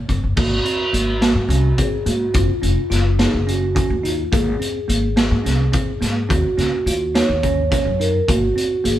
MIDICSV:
0, 0, Header, 1, 5, 480
1, 0, Start_track
1, 0, Tempo, 564972
1, 314, Time_signature, 7, 3, 24, 8
1, 7640, End_track
2, 0, Start_track
2, 0, Title_t, "Vibraphone"
2, 0, Program_c, 0, 11
2, 327, Note_on_c, 0, 66, 80
2, 1529, Note_on_c, 0, 68, 86
2, 1557, Note_off_c, 0, 66, 0
2, 1764, Note_on_c, 0, 66, 79
2, 1769, Note_off_c, 0, 68, 0
2, 2006, Note_off_c, 0, 66, 0
2, 2012, Note_on_c, 0, 65, 91
2, 2689, Note_off_c, 0, 65, 0
2, 2721, Note_on_c, 0, 68, 77
2, 2965, Note_off_c, 0, 68, 0
2, 2970, Note_on_c, 0, 66, 80
2, 3451, Note_on_c, 0, 65, 80
2, 3456, Note_off_c, 0, 66, 0
2, 3682, Note_on_c, 0, 68, 86
2, 3690, Note_off_c, 0, 65, 0
2, 5351, Note_on_c, 0, 66, 91
2, 5407, Note_off_c, 0, 68, 0
2, 6073, Note_on_c, 0, 73, 86
2, 6093, Note_off_c, 0, 66, 0
2, 6799, Note_on_c, 0, 70, 84
2, 6814, Note_off_c, 0, 73, 0
2, 7038, Note_on_c, 0, 66, 95
2, 7043, Note_off_c, 0, 70, 0
2, 7517, Note_on_c, 0, 68, 92
2, 7529, Note_off_c, 0, 66, 0
2, 7640, Note_off_c, 0, 68, 0
2, 7640, End_track
3, 0, Start_track
3, 0, Title_t, "Tine electric piano"
3, 0, Program_c, 1, 4
3, 71, Note_on_c, 1, 60, 62
3, 229, Note_off_c, 1, 60, 0
3, 309, Note_on_c, 1, 58, 70
3, 468, Note_off_c, 1, 58, 0
3, 551, Note_on_c, 1, 60, 67
3, 709, Note_off_c, 1, 60, 0
3, 791, Note_on_c, 1, 58, 63
3, 949, Note_off_c, 1, 58, 0
3, 1028, Note_on_c, 1, 58, 63
3, 1187, Note_off_c, 1, 58, 0
3, 1269, Note_on_c, 1, 61, 79
3, 1428, Note_off_c, 1, 61, 0
3, 1510, Note_on_c, 1, 60, 73
3, 1668, Note_off_c, 1, 60, 0
3, 1749, Note_on_c, 1, 58, 64
3, 1908, Note_off_c, 1, 58, 0
3, 1988, Note_on_c, 1, 60, 88
3, 2147, Note_off_c, 1, 60, 0
3, 2225, Note_on_c, 1, 61, 61
3, 2385, Note_off_c, 1, 61, 0
3, 2465, Note_on_c, 1, 65, 74
3, 2625, Note_off_c, 1, 65, 0
3, 2709, Note_on_c, 1, 63, 71
3, 2868, Note_off_c, 1, 63, 0
3, 2946, Note_on_c, 1, 61, 75
3, 3106, Note_off_c, 1, 61, 0
3, 3184, Note_on_c, 1, 61, 78
3, 3345, Note_off_c, 1, 61, 0
3, 3427, Note_on_c, 1, 63, 66
3, 3586, Note_off_c, 1, 63, 0
3, 3668, Note_on_c, 1, 58, 86
3, 3827, Note_off_c, 1, 58, 0
3, 3906, Note_on_c, 1, 60, 72
3, 4066, Note_off_c, 1, 60, 0
3, 4145, Note_on_c, 1, 58, 74
3, 4305, Note_off_c, 1, 58, 0
3, 4385, Note_on_c, 1, 58, 68
3, 4545, Note_off_c, 1, 58, 0
3, 4622, Note_on_c, 1, 61, 67
3, 4783, Note_off_c, 1, 61, 0
3, 4863, Note_on_c, 1, 60, 85
3, 5023, Note_off_c, 1, 60, 0
3, 5104, Note_on_c, 1, 58, 65
3, 5264, Note_off_c, 1, 58, 0
3, 5343, Note_on_c, 1, 60, 85
3, 5504, Note_off_c, 1, 60, 0
3, 5586, Note_on_c, 1, 61, 69
3, 5745, Note_off_c, 1, 61, 0
3, 5834, Note_on_c, 1, 65, 68
3, 5990, Note_off_c, 1, 65, 0
3, 6071, Note_on_c, 1, 63, 68
3, 6229, Note_off_c, 1, 63, 0
3, 6313, Note_on_c, 1, 61, 76
3, 6470, Note_off_c, 1, 61, 0
3, 6551, Note_on_c, 1, 61, 74
3, 6708, Note_off_c, 1, 61, 0
3, 6795, Note_on_c, 1, 63, 58
3, 6951, Note_off_c, 1, 63, 0
3, 7033, Note_on_c, 1, 58, 74
3, 7190, Note_off_c, 1, 58, 0
3, 7271, Note_on_c, 1, 60, 65
3, 7428, Note_off_c, 1, 60, 0
3, 7512, Note_on_c, 1, 58, 76
3, 7640, Note_off_c, 1, 58, 0
3, 7640, End_track
4, 0, Start_track
4, 0, Title_t, "Upright bass"
4, 0, Program_c, 2, 32
4, 73, Note_on_c, 2, 30, 67
4, 168, Note_off_c, 2, 30, 0
4, 200, Note_on_c, 2, 30, 70
4, 291, Note_off_c, 2, 30, 0
4, 316, Note_on_c, 2, 32, 75
4, 504, Note_off_c, 2, 32, 0
4, 792, Note_on_c, 2, 32, 77
4, 1145, Note_on_c, 2, 44, 83
4, 1157, Note_off_c, 2, 32, 0
4, 1243, Note_off_c, 2, 44, 0
4, 1261, Note_on_c, 2, 36, 87
4, 1455, Note_off_c, 2, 36, 0
4, 1750, Note_on_c, 2, 44, 84
4, 1940, Note_off_c, 2, 44, 0
4, 1992, Note_on_c, 2, 30, 91
4, 2088, Note_off_c, 2, 30, 0
4, 2231, Note_on_c, 2, 29, 73
4, 2327, Note_off_c, 2, 29, 0
4, 2470, Note_on_c, 2, 30, 73
4, 2754, Note_off_c, 2, 30, 0
4, 2834, Note_on_c, 2, 30, 78
4, 3210, Note_off_c, 2, 30, 0
4, 3315, Note_on_c, 2, 39, 81
4, 3597, Note_off_c, 2, 39, 0
4, 3671, Note_on_c, 2, 32, 81
4, 3860, Note_off_c, 2, 32, 0
4, 4154, Note_on_c, 2, 32, 78
4, 4513, Note_on_c, 2, 44, 85
4, 4526, Note_off_c, 2, 32, 0
4, 4607, Note_off_c, 2, 44, 0
4, 4634, Note_on_c, 2, 36, 76
4, 4822, Note_off_c, 2, 36, 0
4, 5111, Note_on_c, 2, 44, 86
4, 5300, Note_off_c, 2, 44, 0
4, 5351, Note_on_c, 2, 39, 92
4, 5446, Note_off_c, 2, 39, 0
4, 5588, Note_on_c, 2, 37, 72
4, 5684, Note_off_c, 2, 37, 0
4, 5828, Note_on_c, 2, 39, 76
4, 6112, Note_off_c, 2, 39, 0
4, 6193, Note_on_c, 2, 39, 84
4, 6569, Note_off_c, 2, 39, 0
4, 6669, Note_on_c, 2, 42, 74
4, 6952, Note_off_c, 2, 42, 0
4, 7040, Note_on_c, 2, 32, 76
4, 7225, Note_off_c, 2, 32, 0
4, 7519, Note_on_c, 2, 32, 72
4, 7640, Note_off_c, 2, 32, 0
4, 7640, End_track
5, 0, Start_track
5, 0, Title_t, "Drums"
5, 76, Note_on_c, 9, 36, 59
5, 76, Note_on_c, 9, 42, 48
5, 161, Note_off_c, 9, 36, 0
5, 161, Note_off_c, 9, 42, 0
5, 312, Note_on_c, 9, 49, 99
5, 316, Note_on_c, 9, 36, 108
5, 397, Note_off_c, 9, 49, 0
5, 401, Note_off_c, 9, 36, 0
5, 556, Note_on_c, 9, 42, 61
5, 641, Note_off_c, 9, 42, 0
5, 797, Note_on_c, 9, 42, 64
5, 882, Note_off_c, 9, 42, 0
5, 1035, Note_on_c, 9, 38, 95
5, 1035, Note_on_c, 9, 42, 75
5, 1120, Note_off_c, 9, 38, 0
5, 1120, Note_off_c, 9, 42, 0
5, 1275, Note_on_c, 9, 42, 58
5, 1360, Note_off_c, 9, 42, 0
5, 1512, Note_on_c, 9, 42, 75
5, 1515, Note_on_c, 9, 36, 91
5, 1596, Note_off_c, 9, 42, 0
5, 1600, Note_off_c, 9, 36, 0
5, 1751, Note_on_c, 9, 42, 58
5, 1836, Note_off_c, 9, 42, 0
5, 1988, Note_on_c, 9, 42, 80
5, 1993, Note_on_c, 9, 36, 94
5, 2073, Note_off_c, 9, 42, 0
5, 2078, Note_off_c, 9, 36, 0
5, 2234, Note_on_c, 9, 42, 57
5, 2319, Note_off_c, 9, 42, 0
5, 2476, Note_on_c, 9, 38, 30
5, 2476, Note_on_c, 9, 42, 60
5, 2561, Note_off_c, 9, 38, 0
5, 2561, Note_off_c, 9, 42, 0
5, 2711, Note_on_c, 9, 38, 101
5, 2711, Note_on_c, 9, 42, 67
5, 2796, Note_off_c, 9, 38, 0
5, 2796, Note_off_c, 9, 42, 0
5, 2961, Note_on_c, 9, 42, 58
5, 3046, Note_off_c, 9, 42, 0
5, 3194, Note_on_c, 9, 36, 98
5, 3196, Note_on_c, 9, 42, 74
5, 3279, Note_off_c, 9, 36, 0
5, 3281, Note_off_c, 9, 42, 0
5, 3440, Note_on_c, 9, 42, 54
5, 3525, Note_off_c, 9, 42, 0
5, 3675, Note_on_c, 9, 36, 112
5, 3677, Note_on_c, 9, 42, 81
5, 3760, Note_off_c, 9, 36, 0
5, 3762, Note_off_c, 9, 42, 0
5, 3922, Note_on_c, 9, 42, 57
5, 4007, Note_off_c, 9, 42, 0
5, 4158, Note_on_c, 9, 42, 56
5, 4243, Note_off_c, 9, 42, 0
5, 4391, Note_on_c, 9, 38, 99
5, 4391, Note_on_c, 9, 42, 69
5, 4476, Note_off_c, 9, 38, 0
5, 4476, Note_off_c, 9, 42, 0
5, 4640, Note_on_c, 9, 38, 33
5, 4640, Note_on_c, 9, 42, 53
5, 4725, Note_off_c, 9, 38, 0
5, 4725, Note_off_c, 9, 42, 0
5, 4869, Note_on_c, 9, 42, 69
5, 4873, Note_on_c, 9, 36, 94
5, 4954, Note_off_c, 9, 42, 0
5, 4958, Note_off_c, 9, 36, 0
5, 5115, Note_on_c, 9, 38, 30
5, 5115, Note_on_c, 9, 42, 56
5, 5200, Note_off_c, 9, 38, 0
5, 5200, Note_off_c, 9, 42, 0
5, 5354, Note_on_c, 9, 36, 104
5, 5356, Note_on_c, 9, 42, 80
5, 5439, Note_off_c, 9, 36, 0
5, 5441, Note_off_c, 9, 42, 0
5, 5594, Note_on_c, 9, 38, 32
5, 5594, Note_on_c, 9, 42, 55
5, 5679, Note_off_c, 9, 38, 0
5, 5679, Note_off_c, 9, 42, 0
5, 5835, Note_on_c, 9, 42, 64
5, 5920, Note_off_c, 9, 42, 0
5, 6077, Note_on_c, 9, 38, 99
5, 6077, Note_on_c, 9, 42, 79
5, 6162, Note_off_c, 9, 38, 0
5, 6162, Note_off_c, 9, 42, 0
5, 6314, Note_on_c, 9, 42, 59
5, 6316, Note_on_c, 9, 36, 73
5, 6399, Note_off_c, 9, 42, 0
5, 6401, Note_off_c, 9, 36, 0
5, 6555, Note_on_c, 9, 38, 31
5, 6555, Note_on_c, 9, 42, 80
5, 6557, Note_on_c, 9, 36, 100
5, 6640, Note_off_c, 9, 38, 0
5, 6640, Note_off_c, 9, 42, 0
5, 6641, Note_off_c, 9, 36, 0
5, 6803, Note_on_c, 9, 42, 53
5, 6888, Note_off_c, 9, 42, 0
5, 7038, Note_on_c, 9, 36, 100
5, 7039, Note_on_c, 9, 42, 84
5, 7123, Note_off_c, 9, 36, 0
5, 7124, Note_off_c, 9, 42, 0
5, 7285, Note_on_c, 9, 42, 55
5, 7370, Note_off_c, 9, 42, 0
5, 7519, Note_on_c, 9, 42, 55
5, 7603, Note_off_c, 9, 42, 0
5, 7640, End_track
0, 0, End_of_file